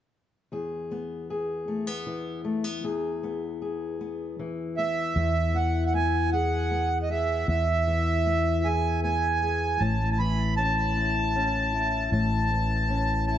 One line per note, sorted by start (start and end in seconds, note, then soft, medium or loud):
0.52 2.83 E2 soft
0.52 1.30 G#4 soft
0.91 1.67 B3 soft
1.30 2.84 G#4 soft
1.68 1.87 A3 soft
1.87 2.44 B3 soft
2.06 4.38 E3 soft
2.45 2.64 A3 soft
2.64 2.84 B3 soft
2.84 5.15 E2 medium
2.84 3.61 G#4 soft
3.23 3.99 B3 soft
3.62 5.12 G#4 soft
4.01 4.77 B3 soft
4.39 5.53 E3 soft
4.77 5.12 B3 soft
4.77 5.57 E5 medium
5.16 7.44 E2 medium
5.16 7.47 E2 medium
5.54 7.87 E3 soft
5.54 5.84 F#5 medium
5.86 5.93 F#5 soft
5.94 6.70 B3 soft
5.94 6.30 G#5 medium
6.32 7.09 G#4 soft
6.32 6.98 F#5 medium
6.71 7.44 B3 soft
7.03 7.09 D#5 soft
7.10 7.44 G#4 soft
7.10 7.47 E5 medium
7.48 9.76 E2 medium
7.48 9.80 E2 medium
7.48 8.68 E5 medium
7.87 10.19 E3 soft
8.26 9.03 B3 soft
8.65 9.41 G#4 soft
8.65 9.00 G#5 medium
9.03 9.76 B3 soft
9.03 9.83 G#5 medium
9.43 9.76 G#4 soft
9.79 12.08 A1 medium
9.79 12.12 A2 medium
9.79 10.10 A5 medium
10.12 10.19 A5 medium
10.19 12.50 E3 soft
10.19 10.55 B5 medium
10.57 11.35 C#4 soft
10.57 12.10 A5 medium
10.97 11.73 E4 soft
11.36 12.89 C#4 soft
11.74 12.08 E4 soft
12.12 13.38 A1 medium
12.12 13.38 A2 medium
12.12 13.25 A5 medium
12.51 13.38 E3 medium
12.89 13.38 C#4 soft
13.27 13.38 E4 soft
13.27 13.38 A5 medium